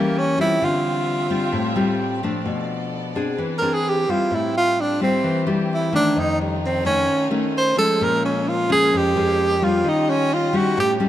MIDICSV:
0, 0, Header, 1, 4, 480
1, 0, Start_track
1, 0, Tempo, 461894
1, 639, Time_signature, 4, 2, 24, 8
1, 11521, End_track
2, 0, Start_track
2, 0, Title_t, "Tenor saxophone"
2, 0, Program_c, 0, 66
2, 0, Note_on_c, 0, 58, 77
2, 193, Note_on_c, 0, 61, 86
2, 208, Note_off_c, 0, 58, 0
2, 416, Note_off_c, 0, 61, 0
2, 425, Note_on_c, 0, 64, 95
2, 671, Note_on_c, 0, 65, 77
2, 686, Note_off_c, 0, 64, 0
2, 2099, Note_off_c, 0, 65, 0
2, 3723, Note_on_c, 0, 70, 76
2, 3882, Note_on_c, 0, 68, 80
2, 3898, Note_off_c, 0, 70, 0
2, 4037, Note_on_c, 0, 67, 84
2, 4052, Note_off_c, 0, 68, 0
2, 4265, Note_on_c, 0, 65, 89
2, 4280, Note_off_c, 0, 67, 0
2, 4522, Note_on_c, 0, 64, 78
2, 4537, Note_off_c, 0, 65, 0
2, 4744, Note_off_c, 0, 64, 0
2, 4750, Note_on_c, 0, 65, 109
2, 4996, Note_on_c, 0, 62, 89
2, 5012, Note_off_c, 0, 65, 0
2, 5217, Note_off_c, 0, 62, 0
2, 5223, Note_on_c, 0, 60, 88
2, 5662, Note_off_c, 0, 60, 0
2, 5965, Note_on_c, 0, 64, 78
2, 6170, Note_off_c, 0, 64, 0
2, 6187, Note_on_c, 0, 62, 100
2, 6432, Note_on_c, 0, 63, 91
2, 6447, Note_off_c, 0, 62, 0
2, 6658, Note_off_c, 0, 63, 0
2, 6663, Note_on_c, 0, 55, 55
2, 6829, Note_off_c, 0, 55, 0
2, 6919, Note_on_c, 0, 60, 81
2, 7126, Note_off_c, 0, 60, 0
2, 7132, Note_on_c, 0, 61, 91
2, 7575, Note_off_c, 0, 61, 0
2, 7872, Note_on_c, 0, 72, 100
2, 8082, Note_off_c, 0, 72, 0
2, 8089, Note_on_c, 0, 69, 100
2, 8351, Note_on_c, 0, 70, 91
2, 8367, Note_off_c, 0, 69, 0
2, 8569, Note_off_c, 0, 70, 0
2, 8575, Note_on_c, 0, 61, 72
2, 8820, Note_on_c, 0, 65, 84
2, 8835, Note_off_c, 0, 61, 0
2, 9051, Note_off_c, 0, 65, 0
2, 9060, Note_on_c, 0, 68, 105
2, 9316, Note_on_c, 0, 67, 89
2, 9332, Note_off_c, 0, 68, 0
2, 10021, Note_on_c, 0, 65, 93
2, 10037, Note_off_c, 0, 67, 0
2, 10270, Note_on_c, 0, 63, 83
2, 10285, Note_off_c, 0, 65, 0
2, 10491, Note_on_c, 0, 61, 102
2, 10507, Note_off_c, 0, 63, 0
2, 10744, Note_on_c, 0, 65, 88
2, 10760, Note_off_c, 0, 61, 0
2, 10977, Note_on_c, 0, 66, 90
2, 10993, Note_off_c, 0, 65, 0
2, 11208, Note_off_c, 0, 66, 0
2, 11223, Note_on_c, 0, 67, 93
2, 11360, Note_off_c, 0, 67, 0
2, 11521, End_track
3, 0, Start_track
3, 0, Title_t, "Violin section"
3, 0, Program_c, 1, 48
3, 0, Note_on_c, 1, 58, 76
3, 0, Note_on_c, 1, 67, 66
3, 0, Note_on_c, 1, 69, 64
3, 0, Note_on_c, 1, 73, 85
3, 614, Note_on_c, 1, 60, 70
3, 614, Note_on_c, 1, 76, 85
3, 616, Note_on_c, 1, 74, 67
3, 618, Note_off_c, 1, 69, 0
3, 618, Note_on_c, 1, 65, 74
3, 619, Note_off_c, 1, 73, 0
3, 620, Note_off_c, 1, 58, 0
3, 2523, Note_off_c, 1, 67, 0
3, 2532, Note_off_c, 1, 60, 0
3, 2532, Note_off_c, 1, 76, 0
3, 2534, Note_off_c, 1, 65, 0
3, 2536, Note_on_c, 1, 69, 63
3, 2547, Note_on_c, 1, 59, 68
3, 3501, Note_off_c, 1, 69, 0
3, 3501, Note_on_c, 1, 68, 63
3, 3505, Note_on_c, 1, 64, 64
3, 3507, Note_off_c, 1, 59, 0
3, 3510, Note_on_c, 1, 60, 68
3, 4436, Note_off_c, 1, 74, 0
3, 4464, Note_off_c, 1, 68, 0
3, 4466, Note_off_c, 1, 64, 0
3, 4469, Note_off_c, 1, 60, 0
3, 4479, Note_on_c, 1, 57, 76
3, 4485, Note_on_c, 1, 67, 69
3, 4488, Note_on_c, 1, 72, 81
3, 6383, Note_off_c, 1, 57, 0
3, 6386, Note_off_c, 1, 67, 0
3, 6388, Note_off_c, 1, 72, 0
3, 6394, Note_on_c, 1, 57, 78
3, 6396, Note_on_c, 1, 63, 67
3, 6401, Note_on_c, 1, 65, 70
3, 6401, Note_on_c, 1, 73, 80
3, 8298, Note_off_c, 1, 57, 0
3, 8299, Note_off_c, 1, 63, 0
3, 8302, Note_off_c, 1, 65, 0
3, 8319, Note_on_c, 1, 56, 70
3, 8324, Note_on_c, 1, 58, 79
3, 10199, Note_off_c, 1, 73, 0
3, 10219, Note_off_c, 1, 56, 0
3, 10221, Note_off_c, 1, 58, 0
3, 10230, Note_on_c, 1, 61, 72
3, 10233, Note_on_c, 1, 67, 71
3, 10237, Note_on_c, 1, 75, 84
3, 10238, Note_on_c, 1, 65, 68
3, 11185, Note_off_c, 1, 61, 0
3, 11189, Note_off_c, 1, 65, 0
3, 11189, Note_off_c, 1, 75, 0
3, 11200, Note_on_c, 1, 57, 71
3, 11203, Note_on_c, 1, 73, 82
3, 11521, Note_off_c, 1, 57, 0
3, 11521, Note_off_c, 1, 67, 0
3, 11521, Note_off_c, 1, 73, 0
3, 11521, End_track
4, 0, Start_track
4, 0, Title_t, "Nylon-string guitar"
4, 0, Program_c, 2, 24
4, 0, Note_on_c, 2, 52, 73
4, 0, Note_on_c, 2, 55, 54
4, 0, Note_on_c, 2, 58, 57
4, 0, Note_on_c, 2, 61, 70
4, 364, Note_off_c, 2, 55, 0
4, 364, Note_off_c, 2, 58, 0
4, 367, Note_off_c, 2, 61, 0
4, 393, Note_on_c, 2, 55, 57
4, 398, Note_on_c, 2, 60, 61
4, 408, Note_on_c, 2, 65, 60
4, 616, Note_off_c, 2, 52, 0
4, 643, Note_on_c, 2, 50, 73
4, 1320, Note_off_c, 2, 55, 0
4, 1323, Note_off_c, 2, 60, 0
4, 1325, Note_off_c, 2, 65, 0
4, 1347, Note_on_c, 2, 55, 59
4, 1354, Note_on_c, 2, 60, 60
4, 1359, Note_on_c, 2, 65, 65
4, 1580, Note_off_c, 2, 50, 0
4, 1583, Note_on_c, 2, 45, 74
4, 1797, Note_off_c, 2, 55, 0
4, 1800, Note_off_c, 2, 60, 0
4, 1803, Note_off_c, 2, 65, 0
4, 1825, Note_on_c, 2, 55, 59
4, 1832, Note_on_c, 2, 60, 60
4, 1838, Note_on_c, 2, 65, 62
4, 2277, Note_off_c, 2, 55, 0
4, 2278, Note_off_c, 2, 60, 0
4, 2283, Note_off_c, 2, 65, 0
4, 2320, Note_on_c, 2, 53, 62
4, 2322, Note_on_c, 2, 57, 55
4, 2329, Note_on_c, 2, 62, 61
4, 2530, Note_off_c, 2, 45, 0
4, 2553, Note_on_c, 2, 47, 70
4, 3245, Note_off_c, 2, 53, 0
4, 3245, Note_off_c, 2, 57, 0
4, 3249, Note_off_c, 2, 62, 0
4, 3277, Note_on_c, 2, 60, 56
4, 3283, Note_on_c, 2, 62, 64
4, 3285, Note_on_c, 2, 68, 64
4, 3496, Note_off_c, 2, 47, 0
4, 3516, Note_on_c, 2, 52, 77
4, 3723, Note_off_c, 2, 60, 0
4, 3726, Note_off_c, 2, 62, 0
4, 3726, Note_off_c, 2, 68, 0
4, 3758, Note_on_c, 2, 60, 65
4, 3762, Note_on_c, 2, 62, 59
4, 3768, Note_on_c, 2, 68, 66
4, 4204, Note_off_c, 2, 60, 0
4, 4206, Note_off_c, 2, 62, 0
4, 4207, Note_off_c, 2, 68, 0
4, 4245, Note_off_c, 2, 52, 0
4, 4249, Note_on_c, 2, 55, 53
4, 4251, Note_on_c, 2, 60, 53
4, 4258, Note_on_c, 2, 64, 61
4, 4476, Note_on_c, 2, 45, 76
4, 5169, Note_off_c, 2, 60, 0
4, 5170, Note_off_c, 2, 55, 0
4, 5174, Note_off_c, 2, 64, 0
4, 5205, Note_on_c, 2, 55, 57
4, 5211, Note_on_c, 2, 60, 66
4, 5217, Note_on_c, 2, 64, 63
4, 5417, Note_off_c, 2, 45, 0
4, 5443, Note_on_c, 2, 52, 73
4, 5647, Note_off_c, 2, 55, 0
4, 5651, Note_off_c, 2, 60, 0
4, 5652, Note_off_c, 2, 64, 0
4, 5680, Note_on_c, 2, 55, 62
4, 5685, Note_on_c, 2, 60, 55
4, 5689, Note_on_c, 2, 64, 58
4, 6125, Note_off_c, 2, 55, 0
4, 6126, Note_off_c, 2, 60, 0
4, 6129, Note_off_c, 2, 64, 0
4, 6157, Note_on_c, 2, 51, 56
4, 6165, Note_on_c, 2, 57, 56
4, 6171, Note_on_c, 2, 61, 60
4, 6380, Note_off_c, 2, 52, 0
4, 6396, Note_on_c, 2, 41, 80
4, 7082, Note_off_c, 2, 51, 0
4, 7087, Note_off_c, 2, 57, 0
4, 7088, Note_off_c, 2, 61, 0
4, 7116, Note_on_c, 2, 51, 63
4, 7120, Note_on_c, 2, 57, 64
4, 7127, Note_on_c, 2, 61, 73
4, 7336, Note_off_c, 2, 41, 0
4, 7561, Note_off_c, 2, 51, 0
4, 7564, Note_off_c, 2, 57, 0
4, 7567, Note_off_c, 2, 61, 0
4, 7593, Note_on_c, 2, 51, 63
4, 7596, Note_on_c, 2, 57, 63
4, 7601, Note_on_c, 2, 61, 60
4, 8040, Note_off_c, 2, 51, 0
4, 8041, Note_off_c, 2, 57, 0
4, 8042, Note_off_c, 2, 61, 0
4, 8070, Note_on_c, 2, 53, 61
4, 8074, Note_on_c, 2, 56, 63
4, 8078, Note_on_c, 2, 61, 62
4, 8322, Note_on_c, 2, 46, 72
4, 8997, Note_off_c, 2, 53, 0
4, 8999, Note_off_c, 2, 56, 0
4, 9001, Note_off_c, 2, 61, 0
4, 9034, Note_on_c, 2, 53, 63
4, 9040, Note_on_c, 2, 56, 58
4, 9040, Note_on_c, 2, 61, 69
4, 9257, Note_off_c, 2, 46, 0
4, 9278, Note_on_c, 2, 41, 78
4, 9479, Note_off_c, 2, 53, 0
4, 9481, Note_off_c, 2, 61, 0
4, 9482, Note_off_c, 2, 56, 0
4, 9515, Note_on_c, 2, 53, 65
4, 9524, Note_on_c, 2, 56, 61
4, 9526, Note_on_c, 2, 61, 66
4, 9959, Note_off_c, 2, 53, 0
4, 9964, Note_off_c, 2, 56, 0
4, 9964, Note_off_c, 2, 61, 0
4, 9996, Note_on_c, 2, 55, 56
4, 10002, Note_on_c, 2, 65, 64
4, 10003, Note_on_c, 2, 61, 62
4, 10214, Note_off_c, 2, 41, 0
4, 10230, Note_on_c, 2, 51, 78
4, 10919, Note_off_c, 2, 55, 0
4, 10921, Note_off_c, 2, 61, 0
4, 10922, Note_off_c, 2, 65, 0
4, 10944, Note_on_c, 2, 55, 68
4, 10950, Note_on_c, 2, 61, 61
4, 10956, Note_on_c, 2, 64, 73
4, 11170, Note_off_c, 2, 51, 0
4, 11191, Note_on_c, 2, 45, 75
4, 11393, Note_off_c, 2, 55, 0
4, 11397, Note_off_c, 2, 61, 0
4, 11398, Note_off_c, 2, 64, 0
4, 11431, Note_on_c, 2, 55, 62
4, 11431, Note_on_c, 2, 61, 56
4, 11436, Note_on_c, 2, 64, 68
4, 11521, Note_off_c, 2, 45, 0
4, 11521, Note_off_c, 2, 55, 0
4, 11521, Note_off_c, 2, 61, 0
4, 11521, Note_off_c, 2, 64, 0
4, 11521, End_track
0, 0, End_of_file